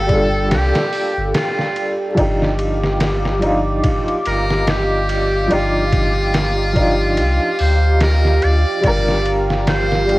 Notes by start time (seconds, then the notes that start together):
Already playing: G1 G3 A#3 D4 F4 G4 A4 G5
0.06 G3 D4 F4, kick, ride
0.12 A4
0.51 C2 G4, snare, ride
0.75 snare, ride
0.93 open hi-hat
1.17 G1
1.34 F4, snare, ride
1.59 snare
1.76 ride
2.15 G1 F3 D4 F5 D6, kick, ride
2.19 D#4 G4
2.42 snare
2.59 ride
2.84 snare
3.00 snare, ride
3.25 snare
3.39 F3 D4 D#4, ride
3.45 F4
3.84 kick, ride
4.08 ride
4.25 G1 A#4, ride
4.51 snare
4.67 G4, snare, ride
5.09 ride
5.48 G1 F3 D4 D#4, ride
5.53 F4 G4
5.92 kick, ride
6.34 snare, ride
6.73 F3 D4 D#4, kick, ride
6.79 F4
7.17 C2, ride
7.59 D2 C5, open hi-hat
8.00 A#4, snare, ride
8.25 snare
8.42 D2 D5, ride
8.81 G1 F3 G3 D4 F4, kick, ride
8.86 A#4 D5
9.08 snare
9.26 ride
9.50 snare
9.67 C5, snare, ride
9.92 snare
10.06 G3 D4, ride
10.10 F4 G4